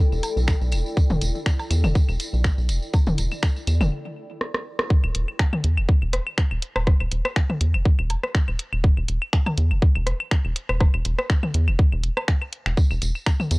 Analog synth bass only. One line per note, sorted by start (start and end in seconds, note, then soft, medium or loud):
0.12 0.20 E1 loud
0.36 0.54 B1 medium
0.61 0.74 B1 medium
0.72 0.82 E1 medium
1.10 1.18 E1 loud
1.21 1.31 E1 medium
1.71 1.85 E2 medium
1.84 1.92 E1 loud
2.08 2.17 E1 loud
2.33 2.51 B1 medium
2.58 2.70 B1 medium
2.69 2.79 E1 medium
3.07 3.15 E1 loud
3.18 3.28 E1 medium
3.67 3.82 E2 medium
3.81 3.89 E1 loud
5.04 5.12 E1 loud
5.15 5.25 E1 medium
5.64 5.79 E2 medium
5.77 5.86 E1 loud
6.02 6.19 E1 loud
6.51 6.59 E1 medium
6.76 6.93 E1 medium
7.00 7.09 E1 loud
7.12 7.21 E1 medium
7.61 7.76 E2 medium
7.74 7.82 E1 loud
7.99 8.16 E1 loud
8.48 8.56 E1 medium
8.73 8.90 E1 medium
8.97 9.05 E1 loud
9.08 9.18 E1 medium
9.58 9.73 E2 loud
9.71 9.79 E1 loud
9.96 10.13 E1 loud
10.45 10.53 E1 loud
10.69 10.87 E1 medium
10.94 11.02 E1 loud
11.05 11.15 E1 medium
11.54 11.69 E2 medium
11.68 11.76 E1 loud
11.92 12.10 E1 loud
12.66 12.74 E1 medium
12.91 12.99 E1 loud
13.02 13.12 E1 medium
13.51 13.59 E2 loud